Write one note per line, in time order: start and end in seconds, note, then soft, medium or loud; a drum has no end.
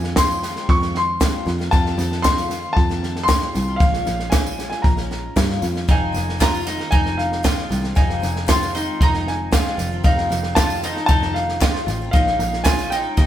0.00 0.55 F2 medium
0.00 0.16 D#3 soft
0.00 0.17 G#3 medium
0.00 0.17 C4 medium
0.00 0.18 F4 medium
0.00 0.18 G#5 medium
0.00 snare soft
0.16 0.43 F2 medium
0.16 0.43 C3 medium
0.16 0.42 D#3 medium
0.16 0.44 G#3 medium
0.16 0.44 C4 medium
0.16 0.44 F4 loud
0.16 0.71 C6 loud
0.16 kick medium
0.16 snare loud
0.16 clap loud
0.16 tambourine medium
0.31 tambourine medium
0.43 0.56 D#3 medium
0.43 0.57 G#3 medium
0.43 0.56 C4 medium
0.43 snare soft
0.43 tambourine medium
0.47 0.55 F4 medium
0.56 0.82 D#3 soft
0.56 0.82 G#3 medium
0.56 0.81 C4 medium
0.56 0.79 F4 medium
0.56 snare soft
0.69 1.33 F2 loud
0.69 0.94 C#6 loud
0.69 kick loud
0.69 snare soft
0.80 1.19 D#3 soft
0.80 1.20 G#3 medium
0.80 1.20 C4 soft
0.80 1.20 F4 medium
0.80 snare soft
0.95 1.44 C6 loud
0.95 snare soft
0.95 tambourine soft
1.20 1.47 F2 medium
1.20 1.47 C3 medium
1.20 1.44 D#3 medium
1.20 1.47 G#3 medium
1.20 1.47 C4 medium
1.20 1.48 F4 medium
1.20 kick medium
1.20 snare loud
1.20 clap medium
1.20 tambourine medium
1.46 1.68 F2 medium
1.46 1.59 D#3 medium
1.46 1.60 A3 medium
1.46 1.59 C4 medium
1.46 1.58 F4 medium
1.46 snare soft
1.59 1.71 D#3 soft
1.59 1.72 A3 medium
1.59 1.72 C4 medium
1.59 1.72 F4 medium
1.59 snare soft
1.71 1.98 F2 medium
1.71 1.94 F2 loud
1.71 1.99 C3 medium
1.71 1.96 D#3 medium
1.71 1.97 A3 medium
1.71 1.98 C4 medium
1.71 1.99 F4 medium
1.71 2.26 A5 loud
1.71 kick loud
1.71 snare soft
1.71 tambourine soft
1.86 snare soft
1.97 2.62 F2 loud
1.97 2.24 D#3 medium
1.97 2.24 A3 medium
1.97 2.24 C4 medium
1.97 2.24 F4 medium
1.97 snare soft
1.97 tambourine medium
2.12 snare soft
2.22 2.50 F2 medium
2.22 2.51 C3 medium
2.22 2.49 D#3 medium
2.22 2.50 A3 medium
2.22 2.51 C4 medium
2.22 2.51 F4 loud
2.22 2.72 C6 loud
2.22 kick medium
2.22 snare loud
2.22 clap loud
2.22 tambourine medium
2.37 snare soft
2.37 tambourine medium
2.50 2.63 D#3 medium
2.50 2.64 A3 medium
2.50 2.63 C4 medium
2.50 2.61 F4 medium
2.50 snare soft
2.50 tambourine medium
2.62 2.91 D#3 soft
2.62 2.90 A3 soft
2.62 2.89 C4 medium
2.62 2.88 F4 medium
2.73 3.41 F2 loud
2.73 3.28 A5 loud
2.73 kick loud
2.73 snare soft
2.89 3.28 D#3 medium
2.89 3.29 A3 soft
2.89 3.29 C4 medium
2.89 3.29 F4 medium
2.89 snare soft
3.03 snare soft
3.03 tambourine soft
3.16 snare soft
3.23 3.80 C6 loud
3.28 3.55 F2 medium
3.28 3.55 C3 medium
3.28 3.52 D#3 medium
3.28 3.53 A3 medium
3.28 3.55 C4 medium
3.28 3.55 F4 medium
3.28 kick medium
3.28 snare loud
3.28 clap medium
3.28 tambourine medium
3.41 snare soft
3.53 3.77 C2 medium
3.53 3.67 D#3 medium
3.53 3.68 A3 medium
3.53 3.67 C4 medium
3.53 3.66 F4 medium
3.53 snare soft
3.53 tambourine medium
3.67 3.80 D#3 medium
3.67 3.81 A3 soft
3.67 3.81 C4 medium
3.67 3.81 F4 medium
3.76 4.02 A#1 medium
3.76 4.06 A#2 medium
3.76 4.32 F5 loud
3.76 snare soft
3.80 4.04 F3 medium
3.80 4.05 G#3 medium
3.80 4.07 C#4 medium
3.80 4.07 F4 medium
3.80 kick loud
3.80 tambourine soft
3.93 snare soft
3.93 tambourine soft
4.05 4.71 A#1 medium
4.05 4.32 F3 medium
4.05 4.32 G#3 medium
4.05 4.32 C#4 medium
4.05 4.33 F4 medium
4.05 snare soft
4.05 tambourine medium
4.20 snare soft
4.20 tambourine soft
4.30 4.58 A#2 medium
4.30 4.56 F3 medium
4.30 4.58 G#3 medium
4.30 4.59 C#4 medium
4.30 4.67 G#5 medium
4.30 kick medium
4.30 snare loud
4.30 clap medium
4.30 tambourine loud
4.34 4.60 F4 medium
4.46 tambourine medium
4.57 4.71 F3 medium
4.57 4.72 G#3 medium
4.57 4.71 C#4 medium
4.57 4.69 F4 medium
4.57 snare soft
4.57 tambourine medium
4.70 4.98 C#4 medium
4.70 4.96 F4 medium
4.70 4.84 G#5 medium
4.70 snare soft
4.74 4.99 G#3 soft
4.82 5.27 A#1 loud
4.82 5.57 A#5 medium
4.82 kick loud
4.82 snare soft
4.82 tambourine soft
4.97 5.36 G#3 soft
4.97 5.37 C#4 medium
4.97 5.36 F4 soft
4.97 snare soft
4.97 tambourine soft
5.11 snare soft
5.11 tambourine soft
5.36 5.60 G2 medium
5.36 5.62 A#2 medium
5.36 5.61 F3 medium
5.36 5.61 G#3 medium
5.36 5.63 C#4 medium
5.36 5.64 F4 medium
5.36 kick medium
5.36 snare loud
5.36 clap medium
5.36 tambourine medium
5.50 snare soft
5.50 tambourine soft
5.62 5.86 F2 medium
5.62 5.75 F3 medium
5.62 5.76 G#3 medium
5.62 5.74 C#4 medium
5.62 5.72 F4 medium
5.62 snare soft
5.62 tambourine medium
5.74 5.88 G#3 soft
5.74 5.88 C#4 medium
5.74 5.88 F4 medium
5.74 snare soft
5.74 tambourine soft
5.88 6.10 F1 loud
5.88 6.14 F2 medium
5.88 6.14 C3 medium
5.88 6.11 D#3 loud
5.88 6.12 G#3 medium
5.88 6.13 C4 medium
5.88 6.40 D#4 medium
5.88 6.14 F4 medium
5.88 6.43 G#5 loud
5.88 kick loud
5.88 snare soft
5.88 tambourine soft
6.12 6.78 F1 medium
6.12 6.39 D#3 medium
6.12 6.39 G#3 medium
6.12 6.39 C4 medium
6.12 6.40 F4 medium
6.12 snare soft
6.12 tambourine medium
6.29 snare soft
6.39 6.66 F2 medium
6.39 6.66 C3 medium
6.39 6.63 D#3 medium
6.39 6.64 G#3 medium
6.39 6.65 C4 medium
6.39 6.66 F4 medium
6.39 6.95 A#5 loud
6.39 kick medium
6.39 snare loud
6.39 clap loud
6.39 tambourine medium
6.55 tambourine medium
6.64 6.78 D#3 medium
6.64 6.78 G#3 medium
6.64 6.77 C4 medium
6.64 6.91 D#4 medium
6.64 6.76 F4 medium
6.64 snare soft
6.64 tambourine medium
6.77 7.06 D#3 soft
6.77 7.05 G#3 soft
6.77 7.03 C4 medium
6.77 7.02 F4 medium
6.77 snare soft
6.91 7.57 F1 loud
6.91 7.43 D#4 medium
6.91 7.18 G#5 loud
6.91 kick loud
6.91 snare soft
7.03 7.43 D#3 soft
7.03 7.43 G#3 soft
7.03 7.43 C4 medium
7.03 7.43 F4 medium
7.03 snare soft
7.18 7.66 F5 medium
7.18 snare soft
7.18 tambourine soft
7.32 snare soft
7.43 7.70 F2 medium
7.43 7.70 C3 medium
7.43 7.68 D#3 medium
7.43 7.69 G#3 medium
7.43 7.70 C4 medium
7.43 7.95 F4 medium
7.43 7.71 F4 medium
7.43 kick medium
7.43 snare loud
7.43 clap medium
7.43 tambourine medium
7.57 snare soft
7.69 7.92 C2 medium
7.69 7.83 D#3 medium
7.69 7.83 G#3 medium
7.69 7.81 C4 medium
7.69 7.80 F4 medium
7.69 snare soft
7.69 tambourine medium
7.82 7.95 D#3 medium
7.82 7.95 G#3 medium
7.82 7.96 C4 medium
7.82 7.96 F4 medium
7.82 snare soft
7.95 8.18 F1 loud
7.95 8.22 F2 medium
7.95 8.22 C3 medium
7.95 8.19 D#3 medium
7.95 8.20 G#3 medium
7.95 8.21 C4 medium
7.95 8.47 D#4 medium
7.95 8.22 F4 medium
7.95 8.50 G#5 medium
7.95 kick loud
7.95 snare soft
7.95 tambourine soft
8.10 snare soft
8.20 8.87 F1 loud
8.20 8.46 D#3 medium
8.20 8.47 G#3 medium
8.20 8.47 C4 medium
8.20 8.47 F4 medium
8.20 snare soft
8.20 tambourine medium
8.36 snare soft
8.46 8.74 F2 medium
8.46 8.73 C3 medium
8.46 8.71 D#3 medium
8.46 8.72 G#3 loud
8.46 8.74 C4 medium
8.46 8.74 F4 medium
8.46 9.03 C6 loud
8.46 kick medium
8.46 snare loud
8.46 clap loud
8.46 tambourine loud
8.62 snare soft
8.62 tambourine medium
8.72 8.87 D#3 medium
8.72 8.86 G#3 medium
8.72 8.85 C4 medium
8.72 9.00 D#4 medium
8.72 8.84 F4 medium
8.72 snare soft
8.76 tambourine medium
8.85 9.14 D#3 soft
8.85 9.13 G#3 medium
8.85 9.12 C4 soft
8.85 9.10 F4 medium
9.01 9.65 F1 loud
9.01 9.52 D#4 medium
9.01 9.26 A#5 loud
9.01 kick loud
9.01 snare soft
9.12 9.52 D#3 soft
9.12 9.52 G#3 soft
9.12 9.52 C4 soft
9.12 9.52 F4 medium
9.12 snare soft
9.27 9.76 G#5 medium
9.27 snare soft
9.27 tambourine soft
9.51 9.78 F2 medium
9.51 9.78 C3 medium
9.51 9.76 D#3 medium
9.51 9.78 G#3 loud
9.51 9.78 C4 medium
9.51 10.04 F4 medium
9.51 9.79 F4 medium
9.51 kick medium
9.51 snare loud
9.51 clap medium
9.51 tambourine loud
9.66 snare soft
9.77 10.00 F1 medium
9.77 9.91 D#3 medium
9.77 9.92 A3 medium
9.77 9.91 C4 medium
9.77 9.90 F4 medium
9.77 snare soft
9.77 tambourine medium
9.92 10.03 D#3 medium
9.92 10.04 A3 medium
9.92 10.04 C4 medium
9.92 10.05 F4 medium
10.04 10.26 F1 loud
10.04 10.30 F2 medium
10.04 10.31 C3 medium
10.04 10.28 D#3 medium
10.04 10.29 A3 medium
10.04 10.30 C4 medium
10.04 10.56 D#4 medium
10.04 10.31 F4 medium
10.04 10.58 F5 medium
10.04 kick loud
10.04 snare soft
10.04 tambourine soft
10.18 snare soft
10.29 10.95 F1 loud
10.29 10.55 D#3 medium
10.29 10.56 A3 medium
10.29 10.57 C4 medium
10.29 10.57 F4 medium
10.29 snare soft
10.29 tambourine medium
10.43 snare soft
10.55 10.82 F2 medium
10.55 10.83 C3 medium
10.55 10.81 D#3 medium
10.55 10.83 A3 medium
10.55 10.83 C4 medium
10.55 10.82 F4 medium
10.55 10.83 F4 medium
10.55 11.05 A5 loud
10.55 kick medium
10.55 snare loud
10.55 clap loud
10.55 tambourine loud
10.70 tambourine medium
10.82 10.96 D#3 medium
10.82 10.96 A3 medium
10.82 10.95 C4 medium
10.82 11.07 D#4 medium
10.82 10.94 F4 medium
10.82 snare soft
10.82 tambourine medium
10.95 11.23 D#3 soft
10.95 11.22 A3 soft
10.95 11.21 C4 medium
10.95 11.19 F4 medium
10.95 snare soft
11.06 11.73 F1 loud
11.06 11.60 D#4 loud
11.06 11.34 A5 loud
11.06 kick loud
11.06 snare soft
11.20 11.60 D#3 soft
11.20 11.61 A3 soft
11.20 11.61 C4 medium
11.20 11.60 F4 medium
11.20 snare soft
11.34 11.83 F5 medium
11.34 snare soft
11.34 tambourine soft
11.49 snare soft
11.60 11.86 F2 medium
11.60 11.87 C3 medium
11.60 11.85 D#3 medium
11.60 11.86 A3 medium
11.60 11.88 C4 medium
11.60 12.12 F4 medium
11.60 11.88 F4 medium
11.60 kick medium
11.60 snare loud
11.60 clap loud
11.60 tambourine medium
11.75 snare soft
11.86 12.08 A1 loud
11.86 11.99 D#3 medium
11.86 12.00 A3 medium
11.86 12.01 C4 medium
11.86 12.00 F4 medium
11.86 snare soft
11.86 tambourine medium
12.01 12.14 D#3 soft
12.01 12.14 A3 soft
12.01 12.14 C4 medium
12.01 12.13 F4 medium
12.11 12.35 A#1 loud
12.11 12.39 A#2 medium
12.11 12.39 F3 medium
12.11 12.64 D#4 medium
12.11 12.66 F5 medium
12.11 kick loud
12.11 snare soft
12.11 tambourine soft
12.15 12.40 G#3 medium
12.15 12.40 C#4 medium
12.15 12.41 F4 loud
12.27 snare soft
12.39 13.03 A#1 loud
12.39 12.65 F3 medium
12.39 12.66 G#3 medium
12.39 12.67 C#4 medium
12.39 snare soft
12.39 tambourine medium
12.44 12.67 F4 medium
12.52 snare soft
12.52 tambourine soft
12.64 12.91 A#2 medium
12.64 12.90 F3 medium
12.64 12.92 G#3 medium
12.64 12.92 C#4 medium
12.64 12.90 F4 medium
12.64 12.88 G#5 loud
12.64 kick medium
12.64 snare loud
12.64 clap loud
12.64 tambourine loud
12.68 12.92 F4 medium
12.79 snare soft
12.79 tambourine medium
12.90 13.04 F3 medium
12.90 13.05 G#3 medium
12.90 13.04 C#4 medium
12.90 13.16 D#4 medium
12.90 13.27 G5 loud
12.90 snare soft
12.90 tambourine medium
12.94 13.02 F4 medium
13.04 13.17 G#3 soft
13.04 13.17 C#4 soft
13.04 13.17 F4 medium
13.17 13.27 D#2 medium
13.17 13.27 D#3 medium
13.17 13.27 A#3 medium
13.17 13.27 C#4 medium
13.17 13.27 D#4 medium
13.17 13.27 G4 medium
13.17 kick loud
13.17 snare soft
13.17 tambourine soft